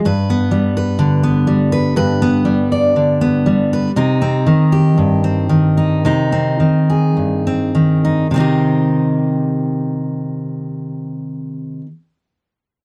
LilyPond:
\new Staff \with { instrumentName = "Steel-string acoustic guitar" } { \time 4/4 \key c \minor \tempo 4 = 55 << { b'16 b8 b'8 b8 b'16 b'16 b8 d''8 b8 b'16 | ees'16 c'8 g'8 c'8 ees'16 ees'16 c'8 aes'8 c'8 ees'16 | <ees c' ees' g'>1 | } \\ { g,8 g8 d8 g8 g,8 g8 d8 g8 | c8 ees8 g,8 ees8 c8 ees8 g,8 ees8 | c1 | } >> }